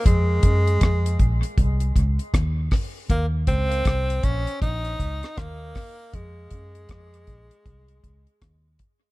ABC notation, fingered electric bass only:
X:1
M:4/4
L:1/16
Q:"Swing 16ths" 1/4=79
K:Fphr
V:1 name="Fingered electric bass" clef=bass
F,,2 G,,2 F,,2 B,,, z C,,2 D,, z E,,2 z2 | E,,2 D,,2 C,,2 B,,, z B,,,2 D,, z E,,2 z2 | F,,2 G,,2 F,,2 B,,, z C,,2 D,, z E,,2 z2 |]